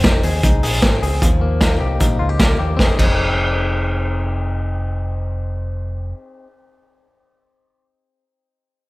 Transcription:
0.00 0.21 F1 medium
0.00 0.82 C4 medium
0.00 snare loud
0.04 0.43 D#4 medium
0.04 kick loud
0.04 closed hi-hat medium
0.23 0.41 D#2 medium
0.23 0.62 G#4 medium
0.23 open hi-hat medium
0.43 0.60 C2 medium
0.43 1.60 D#4 medium
0.43 kick medium
0.43 closed hi-hat medium
0.63 0.80 A#1 medium
0.63 1.01 G#4 medium
0.63 open hi-hat medium
0.82 1.26 C4 medium
0.82 kick loud
0.82 snare loud
0.82 closed hi-hat medium
1.03 1.19 C#2 medium
1.03 1.26 G#4 medium
1.03 open hi-hat medium
1.22 1.78 D#2 medium
1.22 2.83 F3 medium
1.22 kick loud
1.22 closed hi-hat medium
1.41 2.38 A#3 medium
1.61 2.00 D#4 medium
1.61 kick loud
1.61 snare loud
1.61 closed hi-hat medium
1.80 1.97 C2 medium
1.80 2.19 G4 medium
2.00 2.17 A#1 medium
2.00 2.80 D#4 medium
2.00 kick medium
2.00 closed hi-hat medium
2.19 2.54 C#2 medium
2.19 2.29 F4 medium
2.29 2.58 G4 soft
2.39 2.76 A#3 medium
2.39 kick loud
2.39 snare loud
2.39 closed hi-hat medium
2.59 2.76 D#2 medium
2.59 2.83 G4 medium
2.77 2.90 F1 medium
2.77 2.96 C4 medium
2.77 3.00 D#4 medium
2.77 kick medium
2.77 snare medium
2.83 3.03 G#4 medium
2.97 6.12 F1 medium
2.97 6.47 C4 medium
2.97 6.50 D#4 medium
2.97 kick medium
2.97 crash medium
3.03 6.53 G#4 medium

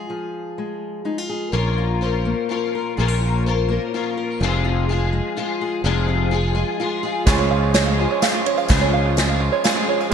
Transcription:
0.00 1.05 F4 soft
0.00 1.28 G#4 soft
0.10 1.51 F3 soft
0.58 1.04 G#3 soft
1.05 1.51 G#3 soft
1.05 1.18 D#4 soft
1.18 1.55 F4 soft
1.29 1.53 G#4 soft
1.52 2.33 A#1 medium
1.52 2.01 A#2 medium
1.52 2.94 A#2 medium
1.52 2.01 F3 medium
1.52 2.01 C#4 medium
1.52 2.02 F4 medium
1.52 2.02 A#4 medium
1.52 2.03 A#4 medium
1.78 2.51 F4 soft
2.01 2.49 F3 soft
2.01 2.49 C#4 medium
2.01 2.51 F4 medium
2.01 2.50 A#4 medium
2.01 2.74 C5 soft
2.25 2.95 A#3 soft
2.49 2.99 F3 medium
2.49 2.99 C#4 soft
2.49 3.22 F4 soft
2.49 3.00 F4 medium
2.49 2.99 A#4 medium
2.75 2.96 A#4 soft
2.97 3.77 A#1 medium
2.97 4.38 A#2 medium
2.97 3.47 A#2 medium
2.97 3.46 F3 medium
2.97 3.46 C#4 medium
2.97 3.48 F4 medium
2.97 3.08 G#4 medium
2.97 3.48 A#4 medium
3.08 3.45 A#4 soft
3.23 3.94 F4 soft
3.46 3.70 F3 medium
3.46 3.71 C#4 medium
3.46 3.71 F4 medium
3.46 3.69 A#4 medium
3.46 4.17 C5 soft
3.68 4.38 A#3 medium
3.68 3.95 F4 soft
3.68 3.94 A#4 soft
3.73 3.94 C#4 soft
3.94 4.43 F3 medium
3.94 4.42 C#4 medium
3.94 4.64 F4 soft
3.94 4.44 F4 medium
3.94 4.43 A#4 medium
4.17 4.39 A#4 soft
4.40 5.20 F1 medium
4.40 4.90 F2 medium
4.40 4.90 C3 medium
4.40 5.84 F3 medium
4.40 4.89 F3 medium
4.40 4.90 G#3 medium
4.40 4.91 F4 medium
4.40 4.89 G#4 medium
4.40 4.92 G#4 medium
4.65 5.37 F4 medium
4.89 5.36 F3 medium
4.89 5.37 G#3 medium
4.89 5.37 F4 medium
4.89 5.61 G#4 soft
4.89 5.38 G#4 medium
5.13 6.54 G#3 medium
5.37 5.85 F3 medium
5.37 5.85 G#3 medium
5.37 6.08 F4 medium
5.37 5.86 F4 medium
5.37 5.86 G#4 medium
5.61 5.84 G#4 soft
5.84 6.63 F1 medium
5.84 6.32 F2 medium
5.84 6.33 C3 medium
5.84 7.24 F3 medium
5.84 6.31 F3 medium
5.84 6.32 G#3 medium
5.84 6.33 F4 medium
5.84 6.30 G#4 medium
5.84 6.34 G#4 medium
6.08 6.79 F4 soft
6.31 6.56 F3 medium
6.31 6.56 G#3 medium
6.31 6.54 F4 medium
6.31 7.02 G#4 soft
6.31 6.53 G#4 medium
6.55 6.79 F3 soft
6.55 7.24 G#3 medium
6.55 6.80 G#3 soft
6.55 6.80 F4 soft
6.55 6.79 G#4 soft
6.80 7.04 F3 soft
6.80 7.04 G#3 medium
6.80 7.25 F4 soft
6.80 7.03 F4 medium
6.80 7.03 G#4 medium
7.03 7.26 F3 soft
7.03 7.27 G#3 soft
7.03 7.27 F4 soft
7.03 8.70 G#4 medium
7.03 7.27 G#4 soft
7.26 8.66 C#2 medium
7.26 8.06 C#2 medium
7.26 7.75 C#3 medium
7.26 8.66 C#3 medium
7.26 10.09 F3 medium
7.26 7.74 F3 medium
7.26 10.08 G#3 medium
7.26 10.14 G#3 medium
7.26 7.76 G#3 medium
7.26 10.08 C#4 medium
7.26 10.09 C#4 medium
7.26 7.62 F4 medium
7.26 10.09 F4 medium
7.26 7.75 F4 medium
7.26 7.78 G#4 medium
7.26 10.09 C#5 medium
7.26 kick loud
7.26 snare soft
7.26 ride medium
7.26 tambourine medium
7.38 7.73 C#5 medium
7.38 tambourine soft
7.51 7.85 F5 medium
7.63 7.98 F4 medium
7.74 7.99 F3 medium
7.74 8.00 G#3 medium
7.74 7.99 F4 medium
7.74 8.10 C#5 medium
7.74 snare medium
7.74 ride medium
7.74 tambourine medium
7.78 7.98 G#4 medium
7.86 8.21 F5 medium
7.99 8.23 G#3 soft
7.99 8.33 F4 medium
7.99 8.23 F4 soft
7.99 8.23 G#4 soft
8.11 8.45 C#5 medium
8.22 8.69 F3 medium
8.22 8.70 G#3 medium
8.22 8.70 F4 medium
8.22 8.71 G#4 medium
8.22 8.56 F5 medium
8.22 snare medium
8.22 ride medium
8.22 tambourine medium
8.34 8.82 F4 medium
8.46 8.80 C#5 medium
8.46 ride soft
8.57 8.92 F5 medium
8.57 tambourine soft
8.68 10.08 C#2 medium
8.68 9.48 C#2 medium
8.68 9.17 C#3 medium
8.68 10.08 C#3 medium
8.68 9.16 F3 medium
8.68 9.18 G#3 medium
8.68 9.18 F4 medium
8.68 9.20 G#4 medium
8.68 kick loud
8.68 snare medium
8.68 ride medium
8.68 tambourine medium
8.81 9.29 C#5 medium
8.93 9.28 F5 medium
9.06 9.39 F4 medium
9.17 9.63 F3 medium
9.17 9.65 G#3 medium
9.17 9.65 F4 medium
9.17 9.67 G#4 medium
9.17 snare medium
9.17 ride medium
9.17 tambourine medium
9.29 9.63 F5 medium
9.40 9.75 F4 medium
9.52 9.88 C#5 medium
9.64 10.12 F3 medium
9.64 10.14 G#3 medium
9.64 10.13 F4 medium
9.64 10.14 G#4 medium
9.64 9.99 F5 medium
9.64 10.09 G#5 medium
9.64 snare medium
9.64 ride medium
9.64 tambourine medium
9.76 10.12 F4 medium
9.89 10.13 C#5 medium
10.00 10.13 F5 medium
10.00 tambourine soft
10.10 10.14 G#3 medium
10.10 10.14 C4 medium

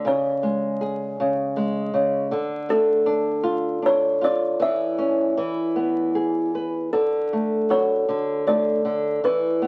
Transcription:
0.05 1.19 C#3 medium
0.05 1.91 C#5 medium
0.43 1.55 G#3 soft
0.81 2.28 G#4 soft
1.20 1.92 C#3 medium
1.57 2.29 G#3 medium
1.94 2.30 C#3 medium
2.31 4.55 D3 medium
2.69 4.17 A3 medium
2.69 3.87 A4 medium
3.06 3.81 D4 medium
3.43 4.20 F4 medium
3.82 4.57 D4 medium
3.82 4.24 C#5 medium
4.21 4.58 F4 medium
4.21 4.62 D5 medium
4.60 5.34 E3 medium
4.60 6.51 E5 medium
4.98 5.36 C#4 medium
5.37 6.89 E3 medium
5.76 6.90 B3 soft
6.15 6.91 G#4 soft
6.55 6.92 B4 soft
6.93 8.07 D3 medium
6.93 7.66 A4 medium
7.33 8.46 A3 soft
7.70 9.18 F#4 medium
7.70 8.49 C#5 medium
8.09 8.84 D3 medium
8.47 9.20 A3 medium
8.47 9.19 D5 medium
8.85 9.21 D3 medium
9.24 9.67 E3 medium
9.24 9.67 B4 medium
9.62 9.67 B3 soft

